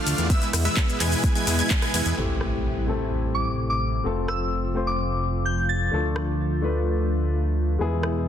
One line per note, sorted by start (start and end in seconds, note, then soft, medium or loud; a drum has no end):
0.00 0.28 D3 medium
0.00 0.26 F3 medium
0.00 0.26 A3 medium
0.00 0.27 A3 medium
0.00 0.27 D4 medium
0.00 0.26 F4 medium
0.00 0.27 F4 medium
0.00 0.27 D5 medium
0.00 0.27 F5 loud
0.00 0.27 F6 medium
0.07 0.14 D2 medium
0.07 open hi-hat loud
0.07 ride medium
0.07 shaker medium
0.18 0.33 E2 medium
0.18 closed hi-hat medium
0.18 shaker soft
0.30 2.16 B2 medium
0.30 2.16 E3 medium
0.30 0.48 G#3 medium
0.30 2.16 G#3 medium
0.30 0.48 B3 medium
0.30 0.48 E4 medium
0.30 2.16 E4 medium
0.30 0.48 B4 medium
0.30 0.48 E5 loud
0.30 0.48 E6 loud
0.30 kick loud
0.30 closed hi-hat medium
0.30 shaker soft
0.42 closed hi-hat soft
0.42 shaker soft
0.53 0.68 E2 loud
0.53 cross-stick medium
0.53 open hi-hat loud
0.53 ride medium
0.53 shaker medium
0.65 0.97 G#3 medium
0.65 0.97 B3 medium
0.65 0.97 E4 medium
0.65 0.97 B4 medium
0.65 0.97 E5 medium
0.65 0.97 E6 medium
0.65 closed hi-hat medium
0.65 shaker soft
0.77 kick loud
0.77 clap loud
0.77 closed hi-hat medium
0.77 shaker soft
0.89 shaker soft
1.00 1.15 E2 medium
1.00 1.33 G#3 medium
1.00 1.33 B3 medium
1.00 1.33 E4 medium
1.00 1.33 B4 medium
1.00 1.33 G#5 loud
1.00 1.33 G#6 medium
1.00 clap soft
1.00 open hi-hat loud
1.00 ride medium
1.00 shaker medium
1.12 open hi-hat medium
1.12 shaker soft
1.24 kick loud
1.24 closed hi-hat medium
1.24 shaker soft
1.35 1.57 G#3 loud
1.35 1.57 B3 medium
1.35 1.57 E4 medium
1.35 1.57 B4 medium
1.35 1.57 G#5 loud
1.35 1.57 G#6 loud
1.35 closed hi-hat soft
1.35 shaker soft
1.47 1.62 E2 medium
1.47 open hi-hat loud
1.47 ride medium
1.47 shaker medium
1.59 1.79 G#3 loud
1.59 1.79 B3 medium
1.59 1.79 E4 medium
1.59 1.79 B4 medium
1.59 1.79 G#5 loud
1.59 1.79 G#6 loud
1.59 closed hi-hat medium
1.59 shaker soft
1.71 kick loud
1.71 clap loud
1.71 closed hi-hat medium
1.71 shaker soft
1.82 1.91 G#3 medium
1.82 1.91 B3 medium
1.82 1.91 E4 medium
1.82 1.91 B4 medium
1.82 1.91 G#5 loud
1.82 1.91 G#6 loud
1.82 cross-stick medium
1.82 closed hi-hat soft
1.94 2.01 E2 medium
1.94 2.15 G#3 medium
1.94 2.15 B3 medium
1.94 2.15 E4 medium
1.94 2.15 B4 medium
1.94 2.15 G#5 loud
1.94 2.15 G#6 loud
1.94 open hi-hat loud
1.94 ride medium
1.94 shaker medium
2.06 2.13 E2 medium
2.06 closed hi-hat medium
2.06 shaker soft
2.16 4.03 A1 medium
2.16 5.89 C3 medium
2.16 4.03 G3 medium
2.16 2.84 A3 medium
2.16 5.89 A3 medium
2.16 2.85 C4 medium
2.16 4.03 E4 medium
2.16 2.85 E4 medium
2.16 2.86 G4 medium
2.16 impact medium
2.41 cross-stick medium
2.87 4.02 A3 medium
2.87 4.02 C4 medium
2.87 4.02 E4 medium
2.87 4.03 A4 medium
3.35 3.53 D6 medium
3.70 3.88 D6 medium
4.04 5.90 F1 medium
4.04 7.76 F3 medium
4.04 4.72 A3 medium
4.04 4.72 C4 medium
4.04 7.76 F4 medium
4.04 4.73 F4 medium
4.04 4.73 A4 medium
4.28 4.46 E6 medium
4.28 cross-stick medium
4.74 5.89 A3 medium
4.74 5.89 C4 medium
4.74 5.90 F4 medium
4.74 5.90 C5 medium
4.87 5.43 D6 medium
5.45 5.63 G6 medium
5.69 5.97 A6 medium
5.91 7.78 D2 medium
5.91 7.78 D3 medium
5.91 6.59 A3 medium
5.91 7.78 A3 medium
5.91 6.60 D4 medium
5.91 6.60 F4 medium
5.91 6.61 A4 medium
6.16 cross-stick medium
6.62 7.77 A3 medium
6.62 7.77 D4 medium
6.62 7.77 F4 medium
6.62 7.78 B4 medium
7.79 8.28 E2 medium
7.79 8.28 B2 medium
7.79 8.28 E3 medium
7.79 8.28 G#3 medium
7.79 8.28 B3 medium
7.79 8.28 E4 medium
7.79 8.28 G#4 medium
8.03 cross-stick medium